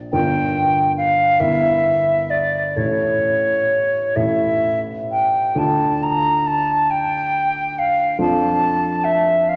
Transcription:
0, 0, Header, 1, 3, 480
1, 0, Start_track
1, 0, Key_signature, -1, "minor"
1, 0, Tempo, 860832
1, 66, Time_signature, 6, 3, 24, 8
1, 1028, Tempo, 930233
1, 2948, Tempo, 895522
1, 3428, Tempo, 859599
1, 5160, End_track
2, 0, Start_track
2, 0, Title_t, "Flute"
2, 0, Program_c, 0, 73
2, 69, Note_on_c, 0, 79, 67
2, 516, Note_off_c, 0, 79, 0
2, 542, Note_on_c, 0, 77, 63
2, 781, Note_on_c, 0, 76, 67
2, 789, Note_off_c, 0, 77, 0
2, 1265, Note_on_c, 0, 74, 53
2, 1272, Note_off_c, 0, 76, 0
2, 1505, Note_on_c, 0, 73, 53
2, 1512, Note_off_c, 0, 74, 0
2, 2223, Note_on_c, 0, 76, 55
2, 2231, Note_off_c, 0, 73, 0
2, 2553, Note_off_c, 0, 76, 0
2, 2716, Note_on_c, 0, 79, 53
2, 2959, Note_on_c, 0, 81, 48
2, 2967, Note_off_c, 0, 79, 0
2, 3197, Note_on_c, 0, 82, 59
2, 3205, Note_off_c, 0, 81, 0
2, 3432, Note_on_c, 0, 81, 63
2, 3440, Note_off_c, 0, 82, 0
2, 3676, Note_on_c, 0, 79, 60
2, 3684, Note_off_c, 0, 81, 0
2, 4169, Note_on_c, 0, 77, 60
2, 4177, Note_off_c, 0, 79, 0
2, 4401, Note_off_c, 0, 77, 0
2, 4405, Note_on_c, 0, 81, 65
2, 4870, Note_on_c, 0, 76, 60
2, 4878, Note_off_c, 0, 81, 0
2, 5117, Note_on_c, 0, 77, 51
2, 5125, Note_off_c, 0, 76, 0
2, 5160, Note_off_c, 0, 77, 0
2, 5160, End_track
3, 0, Start_track
3, 0, Title_t, "Grand piano"
3, 0, Program_c, 1, 0
3, 0, Control_c, 1, 64, 127
3, 71, Note_on_c, 1, 70, 35
3, 72, Note_on_c, 1, 31, 42
3, 73, Note_on_c, 1, 62, 33
3, 73, Note_on_c, 1, 65, 34
3, 76, Control_c, 1, 64, 0
3, 152, Control_c, 1, 64, 127
3, 760, Note_off_c, 1, 70, 0
3, 761, Note_off_c, 1, 31, 0
3, 761, Note_off_c, 1, 62, 0
3, 762, Note_off_c, 1, 65, 0
3, 779, Note_on_c, 1, 70, 31
3, 782, Note_on_c, 1, 31, 38
3, 782, Note_on_c, 1, 64, 33
3, 788, Control_c, 1, 64, 0
3, 880, Control_c, 1, 64, 127
3, 1479, Note_off_c, 1, 70, 0
3, 1480, Note_off_c, 1, 31, 0
3, 1480, Note_off_c, 1, 64, 0
3, 1502, Note_on_c, 1, 69, 29
3, 1504, Note_on_c, 1, 33, 31
3, 1506, Note_on_c, 1, 64, 27
3, 1508, Control_c, 1, 64, 0
3, 1602, Control_c, 1, 64, 127
3, 2203, Note_off_c, 1, 69, 0
3, 2204, Note_off_c, 1, 33, 0
3, 2204, Note_off_c, 1, 64, 0
3, 2222, Note_on_c, 1, 69, 27
3, 2223, Note_on_c, 1, 64, 27
3, 2224, Note_on_c, 1, 33, 34
3, 2928, Note_off_c, 1, 69, 0
3, 2929, Note_off_c, 1, 33, 0
3, 2929, Note_off_c, 1, 64, 0
3, 2941, Note_on_c, 1, 69, 29
3, 2943, Note_on_c, 1, 38, 35
3, 2944, Note_on_c, 1, 62, 29
3, 2946, Note_on_c, 1, 65, 28
3, 2957, Control_c, 1, 64, 0
3, 3046, Control_c, 1, 64, 127
3, 4372, Note_off_c, 1, 69, 0
3, 4373, Note_off_c, 1, 38, 0
3, 4374, Note_off_c, 1, 62, 0
3, 4375, Note_off_c, 1, 65, 0
3, 4392, Note_on_c, 1, 41, 38
3, 4392, Note_on_c, 1, 69, 32
3, 4393, Note_on_c, 1, 62, 31
3, 4393, Note_on_c, 1, 65, 34
3, 4407, Control_c, 1, 64, 0
3, 4514, Control_c, 1, 64, 127
3, 5160, Note_off_c, 1, 41, 0
3, 5160, Note_off_c, 1, 62, 0
3, 5160, Note_off_c, 1, 65, 0
3, 5160, Note_off_c, 1, 69, 0
3, 5160, End_track
0, 0, End_of_file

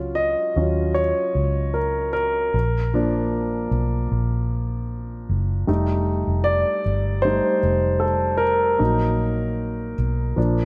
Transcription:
0, 0, Header, 1, 3, 480
1, 0, Start_track
1, 0, Tempo, 785340
1, 1554, Time_signature, 4, 2, 24, 8
1, 6509, End_track
2, 0, Start_track
2, 0, Title_t, "Grand piano"
2, 0, Program_c, 0, 0
2, 0, Control_c, 0, 64, 127
2, 0, Note_on_c, 0, 54, 36
2, 0, Note_on_c, 0, 61, 34
2, 0, Note_on_c, 0, 65, 43
2, 93, Note_on_c, 0, 75, 71
2, 342, Note_off_c, 0, 54, 0
2, 342, Note_on_c, 0, 54, 37
2, 347, Note_off_c, 0, 61, 0
2, 347, Note_off_c, 0, 65, 0
2, 347, Note_on_c, 0, 61, 31
2, 347, Note_on_c, 0, 65, 37
2, 562, Note_off_c, 0, 54, 0
2, 565, Note_off_c, 0, 61, 0
2, 565, Note_off_c, 0, 65, 0
2, 578, Note_on_c, 0, 73, 68
2, 598, Note_off_c, 0, 75, 0
2, 1062, Note_on_c, 0, 70, 55
2, 1080, Note_off_c, 0, 73, 0
2, 1292, Note_off_c, 0, 70, 0
2, 1301, Note_on_c, 0, 70, 69
2, 1560, Control_c, 0, 64, 0
2, 1681, Control_c, 0, 64, 127
2, 1796, Note_on_c, 0, 53, 41
2, 1801, Note_on_c, 0, 58, 39
2, 1803, Note_on_c, 0, 62, 49
2, 2246, Note_off_c, 0, 70, 0
2, 3450, Note_off_c, 0, 53, 0
2, 3453, Note_off_c, 0, 58, 0
2, 3454, Note_off_c, 0, 62, 0
2, 3467, Note_on_c, 0, 55, 42
2, 3471, Note_on_c, 0, 57, 39
2, 3475, Note_on_c, 0, 63, 47
2, 3482, Control_c, 0, 64, 0
2, 3572, Control_c, 0, 64, 127
2, 3936, Note_on_c, 0, 74, 83
2, 4162, Note_off_c, 0, 55, 0
2, 4164, Note_off_c, 0, 57, 0
2, 4165, Note_off_c, 0, 63, 0
2, 4413, Note_on_c, 0, 72, 75
2, 4429, Note_on_c, 0, 55, 36
2, 4430, Note_on_c, 0, 57, 35
2, 4433, Note_off_c, 0, 74, 0
2, 4433, Note_on_c, 0, 63, 41
2, 4641, Note_off_c, 0, 55, 0
2, 4641, Note_off_c, 0, 57, 0
2, 4643, Note_off_c, 0, 63, 0
2, 4888, Note_on_c, 0, 69, 60
2, 4908, Note_off_c, 0, 72, 0
2, 5119, Note_on_c, 0, 70, 78
2, 5140, Note_off_c, 0, 69, 0
2, 5371, Note_on_c, 0, 54, 41
2, 5373, Note_on_c, 0, 58, 36
2, 5374, Note_on_c, 0, 63, 46
2, 5387, Control_c, 0, 64, 0
2, 5477, Control_c, 0, 64, 127
2, 6064, Note_off_c, 0, 70, 0
2, 6070, Note_off_c, 0, 54, 0
2, 6072, Note_off_c, 0, 58, 0
2, 6072, Note_off_c, 0, 63, 0
2, 6334, Note_on_c, 0, 53, 39
2, 6338, Note_on_c, 0, 58, 36
2, 6343, Note_on_c, 0, 62, 42
2, 6348, Control_c, 0, 64, 0
2, 6451, Control_c, 0, 64, 127
2, 6509, Note_off_c, 0, 53, 0
2, 6509, Note_off_c, 0, 58, 0
2, 6509, Note_off_c, 0, 62, 0
2, 6509, End_track
3, 0, Start_track
3, 0, Title_t, "Fingered electric bass"
3, 0, Program_c, 1, 33
3, 0, Note_on_c, 1, 37, 57
3, 210, Note_off_c, 1, 37, 0
3, 344, Note_on_c, 1, 39, 65
3, 683, Note_off_c, 1, 39, 0
3, 825, Note_on_c, 1, 37, 57
3, 1527, Note_off_c, 1, 37, 0
3, 1553, Note_on_c, 1, 34, 78
3, 2251, Note_off_c, 1, 34, 0
3, 2269, Note_on_c, 1, 35, 69
3, 2496, Note_off_c, 1, 35, 0
3, 2515, Note_on_c, 1, 34, 71
3, 3210, Note_off_c, 1, 34, 0
3, 3235, Note_on_c, 1, 30, 75
3, 3458, Note_off_c, 1, 30, 0
3, 3476, Note_on_c, 1, 29, 80
3, 3809, Note_off_c, 1, 29, 0
3, 3834, Note_on_c, 1, 29, 65
3, 4055, Note_off_c, 1, 29, 0
3, 4190, Note_on_c, 1, 31, 72
3, 4520, Note_off_c, 1, 31, 0
3, 4664, Note_on_c, 1, 29, 69
3, 5355, Note_off_c, 1, 29, 0
3, 5381, Note_on_c, 1, 34, 82
3, 6076, Note_off_c, 1, 34, 0
3, 6102, Note_on_c, 1, 35, 66
3, 6325, Note_off_c, 1, 35, 0
3, 6341, Note_on_c, 1, 34, 71
3, 6509, Note_off_c, 1, 34, 0
3, 6509, End_track
0, 0, End_of_file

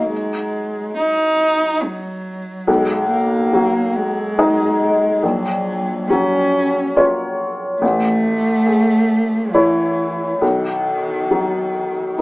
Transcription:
0, 0, Header, 1, 3, 480
1, 0, Start_track
1, 0, Tempo, 855920
1, 62, Time_signature, 3, 2, 24, 8
1, 4862, Tempo, 877193
1, 6803, End_track
2, 0, Start_track
2, 0, Title_t, "Felt piano"
2, 0, Program_c, 0, 0
2, 0, Control_c, 0, 64, 127
2, 0, Note_on_c, 0, 51, 31
2, 0, Note_on_c, 0, 54, 35
2, 0, Note_on_c, 0, 63, 33
2, 0, Note_on_c, 0, 75, 35
2, 72, Control_c, 0, 64, 0
2, 74, Note_off_c, 0, 51, 0
2, 174, Control_c, 0, 64, 127
2, 1477, Note_off_c, 0, 54, 0
2, 1478, Note_off_c, 0, 63, 0
2, 1479, Note_off_c, 0, 75, 0
2, 1500, Note_on_c, 0, 35, 50
2, 1510, Control_c, 0, 64, 0
2, 1587, Control_c, 0, 64, 127
2, 1981, Note_on_c, 0, 54, 40
2, 2458, Note_on_c, 0, 63, 41
2, 2461, Note_on_c, 0, 75, 43
2, 2742, Note_off_c, 0, 54, 0
2, 2908, Note_off_c, 0, 35, 0
2, 2911, Note_off_c, 0, 63, 0
2, 2912, Note_off_c, 0, 75, 0
2, 2934, Note_on_c, 0, 34, 47
2, 2942, Control_c, 0, 64, 0
2, 3049, Control_c, 0, 64, 127
2, 3422, Note_on_c, 0, 54, 42
2, 3905, Note_on_c, 0, 65, 37
2, 3909, Note_on_c, 0, 73, 45
2, 4194, Note_off_c, 0, 54, 0
2, 4363, Note_off_c, 0, 65, 0
2, 4364, Note_off_c, 0, 34, 0
2, 4365, Note_off_c, 0, 73, 0
2, 4384, Note_on_c, 0, 33, 53
2, 4396, Control_c, 0, 64, 0
2, 4475, Control_c, 0, 64, 127
2, 4859, Note_on_c, 0, 68, 35
2, 5340, Note_on_c, 0, 64, 38
2, 5341, Note_on_c, 0, 73, 39
2, 5621, Note_off_c, 0, 68, 0
2, 5794, Note_off_c, 0, 33, 0
2, 5798, Note_off_c, 0, 64, 0
2, 5798, Note_off_c, 0, 73, 0
2, 5817, Note_on_c, 0, 35, 41
2, 5827, Control_c, 0, 64, 0
2, 5934, Control_c, 0, 64, 127
2, 6306, Note_on_c, 0, 54, 35
2, 6784, Note_on_c, 0, 63, 34
2, 6803, Note_off_c, 0, 35, 0
2, 6803, Note_off_c, 0, 54, 0
2, 6803, Note_off_c, 0, 63, 0
2, 6803, End_track
3, 0, Start_track
3, 0, Title_t, "Cello"
3, 0, Program_c, 1, 42
3, 59, Note_on_c, 1, 56, 59
3, 537, Note_off_c, 1, 56, 0
3, 547, Note_on_c, 1, 63, 67
3, 1026, Note_on_c, 1, 54, 58
3, 1034, Note_off_c, 1, 63, 0
3, 1497, Note_on_c, 1, 56, 67
3, 1506, Note_off_c, 1, 54, 0
3, 1736, Note_off_c, 1, 56, 0
3, 1739, Note_on_c, 1, 58, 65
3, 2219, Note_on_c, 1, 56, 67
3, 2227, Note_off_c, 1, 58, 0
3, 2933, Note_on_c, 1, 54, 70
3, 2942, Note_off_c, 1, 56, 0
3, 3413, Note_on_c, 1, 61, 64
3, 3422, Note_off_c, 1, 54, 0
3, 3900, Note_off_c, 1, 61, 0
3, 4380, Note_on_c, 1, 57, 81
3, 5330, Note_on_c, 1, 52, 60
3, 5338, Note_off_c, 1, 57, 0
3, 5812, Note_off_c, 1, 52, 0
3, 5815, Note_on_c, 1, 51, 58
3, 6803, Note_off_c, 1, 51, 0
3, 6803, End_track
0, 0, End_of_file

